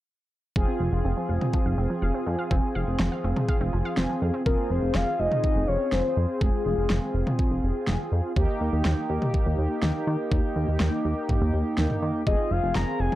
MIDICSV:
0, 0, Header, 1, 6, 480
1, 0, Start_track
1, 0, Key_signature, -4, "minor"
1, 0, Tempo, 487805
1, 551, Time_signature, 4, 2, 24, 8
1, 12942, End_track
2, 0, Start_track
2, 0, Title_t, "Soft synth lead"
2, 0, Program_c, 0, 80
2, 4389, Note_on_c, 0, 70, 101
2, 4632, Note_on_c, 0, 72, 94
2, 4646, Note_off_c, 0, 70, 0
2, 4869, Note_on_c, 0, 77, 108
2, 4884, Note_off_c, 0, 72, 0
2, 5107, Note_on_c, 0, 75, 110
2, 5122, Note_off_c, 0, 77, 0
2, 5583, Note_on_c, 0, 73, 99
2, 5598, Note_off_c, 0, 75, 0
2, 5825, Note_on_c, 0, 72, 99
2, 5840, Note_off_c, 0, 73, 0
2, 6305, Note_on_c, 0, 68, 96
2, 6320, Note_off_c, 0, 72, 0
2, 6543, Note_off_c, 0, 68, 0
2, 6549, Note_on_c, 0, 68, 82
2, 6996, Note_off_c, 0, 68, 0
2, 12073, Note_on_c, 0, 75, 102
2, 12312, Note_on_c, 0, 77, 98
2, 12326, Note_off_c, 0, 75, 0
2, 12545, Note_off_c, 0, 77, 0
2, 12551, Note_on_c, 0, 82, 106
2, 12789, Note_on_c, 0, 80, 114
2, 12804, Note_off_c, 0, 82, 0
2, 12942, Note_off_c, 0, 80, 0
2, 12942, End_track
3, 0, Start_track
3, 0, Title_t, "Analog polysynth"
3, 0, Program_c, 1, 90
3, 550, Note_on_c, 1, 60, 74
3, 550, Note_on_c, 1, 65, 68
3, 550, Note_on_c, 1, 68, 83
3, 4351, Note_off_c, 1, 60, 0
3, 4351, Note_off_c, 1, 65, 0
3, 4351, Note_off_c, 1, 68, 0
3, 4390, Note_on_c, 1, 65, 60
3, 4391, Note_on_c, 1, 60, 65
3, 4391, Note_on_c, 1, 68, 70
3, 8191, Note_off_c, 1, 60, 0
3, 8191, Note_off_c, 1, 65, 0
3, 8191, Note_off_c, 1, 68, 0
3, 8228, Note_on_c, 1, 67, 87
3, 8229, Note_on_c, 1, 58, 77
3, 8230, Note_on_c, 1, 63, 74
3, 12030, Note_off_c, 1, 58, 0
3, 12030, Note_off_c, 1, 67, 0
3, 12031, Note_off_c, 1, 63, 0
3, 12071, Note_on_c, 1, 65, 60
3, 12072, Note_on_c, 1, 60, 67
3, 12072, Note_on_c, 1, 68, 72
3, 12942, Note_off_c, 1, 60, 0
3, 12942, Note_off_c, 1, 65, 0
3, 12942, Note_off_c, 1, 68, 0
3, 12942, End_track
4, 0, Start_track
4, 0, Title_t, "Synth pluck"
4, 0, Program_c, 2, 84
4, 550, Note_on_c, 2, 77, 95
4, 621, Note_off_c, 2, 77, 0
4, 670, Note_on_c, 2, 60, 72
4, 742, Note_off_c, 2, 60, 0
4, 792, Note_on_c, 2, 53, 73
4, 863, Note_off_c, 2, 53, 0
4, 911, Note_on_c, 2, 77, 76
4, 983, Note_off_c, 2, 77, 0
4, 1031, Note_on_c, 2, 60, 84
4, 1102, Note_off_c, 2, 60, 0
4, 1150, Note_on_c, 2, 53, 69
4, 1221, Note_off_c, 2, 53, 0
4, 1269, Note_on_c, 2, 77, 81
4, 1341, Note_off_c, 2, 77, 0
4, 1510, Note_on_c, 2, 53, 82
4, 1582, Note_off_c, 2, 53, 0
4, 1631, Note_on_c, 2, 77, 78
4, 1702, Note_off_c, 2, 77, 0
4, 1750, Note_on_c, 2, 60, 75
4, 1822, Note_off_c, 2, 60, 0
4, 1869, Note_on_c, 2, 53, 71
4, 1941, Note_off_c, 2, 53, 0
4, 1988, Note_on_c, 2, 77, 91
4, 2060, Note_off_c, 2, 77, 0
4, 2109, Note_on_c, 2, 60, 70
4, 2181, Note_off_c, 2, 60, 0
4, 2228, Note_on_c, 2, 53, 75
4, 2300, Note_off_c, 2, 53, 0
4, 2348, Note_on_c, 2, 77, 79
4, 2420, Note_off_c, 2, 77, 0
4, 2468, Note_on_c, 2, 60, 92
4, 2541, Note_off_c, 2, 60, 0
4, 2708, Note_on_c, 2, 77, 78
4, 2781, Note_off_c, 2, 77, 0
4, 2949, Note_on_c, 2, 53, 83
4, 3021, Note_off_c, 2, 53, 0
4, 3070, Note_on_c, 2, 77, 75
4, 3141, Note_off_c, 2, 77, 0
4, 3191, Note_on_c, 2, 60, 76
4, 3262, Note_off_c, 2, 60, 0
4, 3311, Note_on_c, 2, 53, 69
4, 3382, Note_off_c, 2, 53, 0
4, 3430, Note_on_c, 2, 77, 90
4, 3501, Note_off_c, 2, 77, 0
4, 3551, Note_on_c, 2, 60, 74
4, 3622, Note_off_c, 2, 60, 0
4, 3671, Note_on_c, 2, 53, 71
4, 3742, Note_off_c, 2, 53, 0
4, 3791, Note_on_c, 2, 77, 77
4, 3862, Note_off_c, 2, 77, 0
4, 3909, Note_on_c, 2, 60, 85
4, 3981, Note_off_c, 2, 60, 0
4, 4030, Note_on_c, 2, 53, 69
4, 4102, Note_off_c, 2, 53, 0
4, 4270, Note_on_c, 2, 60, 72
4, 4341, Note_off_c, 2, 60, 0
4, 12942, End_track
5, 0, Start_track
5, 0, Title_t, "Analog synth bass"
5, 0, Program_c, 3, 38
5, 551, Note_on_c, 3, 29, 107
5, 643, Note_off_c, 3, 29, 0
5, 789, Note_on_c, 3, 29, 92
5, 882, Note_off_c, 3, 29, 0
5, 910, Note_on_c, 3, 29, 97
5, 1003, Note_off_c, 3, 29, 0
5, 1031, Note_on_c, 3, 29, 98
5, 1123, Note_off_c, 3, 29, 0
5, 1271, Note_on_c, 3, 29, 97
5, 1363, Note_off_c, 3, 29, 0
5, 1629, Note_on_c, 3, 29, 97
5, 1722, Note_off_c, 3, 29, 0
5, 1750, Note_on_c, 3, 29, 94
5, 1842, Note_off_c, 3, 29, 0
5, 1990, Note_on_c, 3, 29, 99
5, 2082, Note_off_c, 3, 29, 0
5, 2230, Note_on_c, 3, 41, 103
5, 2322, Note_off_c, 3, 41, 0
5, 2470, Note_on_c, 3, 29, 103
5, 2562, Note_off_c, 3, 29, 0
5, 2711, Note_on_c, 3, 29, 96
5, 2803, Note_off_c, 3, 29, 0
5, 2829, Note_on_c, 3, 29, 97
5, 2922, Note_off_c, 3, 29, 0
5, 2950, Note_on_c, 3, 29, 97
5, 3042, Note_off_c, 3, 29, 0
5, 3190, Note_on_c, 3, 29, 101
5, 3283, Note_off_c, 3, 29, 0
5, 3550, Note_on_c, 3, 29, 99
5, 3642, Note_off_c, 3, 29, 0
5, 3670, Note_on_c, 3, 29, 101
5, 3762, Note_off_c, 3, 29, 0
5, 3910, Note_on_c, 3, 29, 97
5, 4002, Note_off_c, 3, 29, 0
5, 4150, Note_on_c, 3, 41, 99
5, 4242, Note_off_c, 3, 41, 0
5, 4390, Note_on_c, 3, 29, 105
5, 4482, Note_off_c, 3, 29, 0
5, 4629, Note_on_c, 3, 29, 93
5, 4721, Note_off_c, 3, 29, 0
5, 4749, Note_on_c, 3, 29, 97
5, 4841, Note_off_c, 3, 29, 0
5, 4871, Note_on_c, 3, 29, 98
5, 4963, Note_off_c, 3, 29, 0
5, 5110, Note_on_c, 3, 29, 99
5, 5202, Note_off_c, 3, 29, 0
5, 5471, Note_on_c, 3, 29, 102
5, 5563, Note_off_c, 3, 29, 0
5, 5590, Note_on_c, 3, 29, 94
5, 5682, Note_off_c, 3, 29, 0
5, 5830, Note_on_c, 3, 29, 99
5, 5922, Note_off_c, 3, 29, 0
5, 6070, Note_on_c, 3, 41, 102
5, 6162, Note_off_c, 3, 41, 0
5, 6310, Note_on_c, 3, 29, 106
5, 6402, Note_off_c, 3, 29, 0
5, 6549, Note_on_c, 3, 29, 102
5, 6642, Note_off_c, 3, 29, 0
5, 6670, Note_on_c, 3, 29, 93
5, 6762, Note_off_c, 3, 29, 0
5, 6791, Note_on_c, 3, 29, 103
5, 6883, Note_off_c, 3, 29, 0
5, 7029, Note_on_c, 3, 29, 97
5, 7122, Note_off_c, 3, 29, 0
5, 7390, Note_on_c, 3, 29, 94
5, 7482, Note_off_c, 3, 29, 0
5, 7510, Note_on_c, 3, 29, 93
5, 7602, Note_off_c, 3, 29, 0
5, 7750, Note_on_c, 3, 29, 98
5, 7843, Note_off_c, 3, 29, 0
5, 7990, Note_on_c, 3, 41, 95
5, 8082, Note_off_c, 3, 41, 0
5, 8231, Note_on_c, 3, 39, 99
5, 8323, Note_off_c, 3, 39, 0
5, 8471, Note_on_c, 3, 39, 97
5, 8563, Note_off_c, 3, 39, 0
5, 8589, Note_on_c, 3, 39, 95
5, 8682, Note_off_c, 3, 39, 0
5, 8711, Note_on_c, 3, 39, 100
5, 8803, Note_off_c, 3, 39, 0
5, 8950, Note_on_c, 3, 39, 107
5, 9042, Note_off_c, 3, 39, 0
5, 9312, Note_on_c, 3, 39, 93
5, 9403, Note_off_c, 3, 39, 0
5, 9431, Note_on_c, 3, 39, 97
5, 9523, Note_off_c, 3, 39, 0
5, 9671, Note_on_c, 3, 39, 93
5, 9763, Note_off_c, 3, 39, 0
5, 9911, Note_on_c, 3, 51, 99
5, 10003, Note_off_c, 3, 51, 0
5, 10150, Note_on_c, 3, 39, 109
5, 10243, Note_off_c, 3, 39, 0
5, 10392, Note_on_c, 3, 39, 97
5, 10483, Note_off_c, 3, 39, 0
5, 10512, Note_on_c, 3, 39, 94
5, 10604, Note_off_c, 3, 39, 0
5, 10633, Note_on_c, 3, 39, 102
5, 10724, Note_off_c, 3, 39, 0
5, 10872, Note_on_c, 3, 39, 91
5, 10964, Note_off_c, 3, 39, 0
5, 11233, Note_on_c, 3, 39, 99
5, 11324, Note_off_c, 3, 39, 0
5, 11352, Note_on_c, 3, 39, 98
5, 11444, Note_off_c, 3, 39, 0
5, 11591, Note_on_c, 3, 39, 103
5, 11683, Note_off_c, 3, 39, 0
5, 11831, Note_on_c, 3, 51, 96
5, 11923, Note_off_c, 3, 51, 0
5, 12071, Note_on_c, 3, 29, 108
5, 12163, Note_off_c, 3, 29, 0
5, 12311, Note_on_c, 3, 29, 92
5, 12403, Note_off_c, 3, 29, 0
5, 12432, Note_on_c, 3, 29, 100
5, 12524, Note_off_c, 3, 29, 0
5, 12551, Note_on_c, 3, 29, 97
5, 12643, Note_off_c, 3, 29, 0
5, 12792, Note_on_c, 3, 29, 99
5, 12884, Note_off_c, 3, 29, 0
5, 12942, End_track
6, 0, Start_track
6, 0, Title_t, "Drums"
6, 550, Note_on_c, 9, 36, 110
6, 648, Note_off_c, 9, 36, 0
6, 1391, Note_on_c, 9, 47, 86
6, 1489, Note_off_c, 9, 47, 0
6, 1510, Note_on_c, 9, 36, 88
6, 1609, Note_off_c, 9, 36, 0
6, 2470, Note_on_c, 9, 36, 111
6, 2568, Note_off_c, 9, 36, 0
6, 2946, Note_on_c, 9, 38, 109
6, 3044, Note_off_c, 9, 38, 0
6, 3310, Note_on_c, 9, 47, 92
6, 3409, Note_off_c, 9, 47, 0
6, 3430, Note_on_c, 9, 36, 89
6, 3528, Note_off_c, 9, 36, 0
6, 3907, Note_on_c, 9, 38, 102
6, 4005, Note_off_c, 9, 38, 0
6, 4390, Note_on_c, 9, 36, 112
6, 4488, Note_off_c, 9, 36, 0
6, 4866, Note_on_c, 9, 38, 111
6, 4965, Note_off_c, 9, 38, 0
6, 5231, Note_on_c, 9, 47, 90
6, 5329, Note_off_c, 9, 47, 0
6, 5350, Note_on_c, 9, 36, 92
6, 5449, Note_off_c, 9, 36, 0
6, 5826, Note_on_c, 9, 38, 100
6, 5925, Note_off_c, 9, 38, 0
6, 6310, Note_on_c, 9, 36, 110
6, 6408, Note_off_c, 9, 36, 0
6, 6787, Note_on_c, 9, 38, 113
6, 6886, Note_off_c, 9, 38, 0
6, 7152, Note_on_c, 9, 47, 91
6, 7250, Note_off_c, 9, 47, 0
6, 7271, Note_on_c, 9, 36, 89
6, 7369, Note_off_c, 9, 36, 0
6, 7746, Note_on_c, 9, 38, 101
6, 7845, Note_off_c, 9, 38, 0
6, 8230, Note_on_c, 9, 36, 112
6, 8329, Note_off_c, 9, 36, 0
6, 8707, Note_on_c, 9, 38, 111
6, 8805, Note_off_c, 9, 38, 0
6, 9071, Note_on_c, 9, 47, 89
6, 9169, Note_off_c, 9, 47, 0
6, 9191, Note_on_c, 9, 36, 90
6, 9290, Note_off_c, 9, 36, 0
6, 9666, Note_on_c, 9, 38, 104
6, 9765, Note_off_c, 9, 38, 0
6, 10151, Note_on_c, 9, 36, 113
6, 10249, Note_off_c, 9, 36, 0
6, 10626, Note_on_c, 9, 38, 112
6, 10725, Note_off_c, 9, 38, 0
6, 11110, Note_on_c, 9, 45, 88
6, 11112, Note_on_c, 9, 36, 90
6, 11209, Note_off_c, 9, 45, 0
6, 11210, Note_off_c, 9, 36, 0
6, 11587, Note_on_c, 9, 38, 101
6, 11686, Note_off_c, 9, 38, 0
6, 11709, Note_on_c, 9, 45, 77
6, 11807, Note_off_c, 9, 45, 0
6, 12071, Note_on_c, 9, 36, 112
6, 12170, Note_off_c, 9, 36, 0
6, 12548, Note_on_c, 9, 38, 114
6, 12646, Note_off_c, 9, 38, 0
6, 12912, Note_on_c, 9, 47, 92
6, 12942, Note_off_c, 9, 47, 0
6, 12942, End_track
0, 0, End_of_file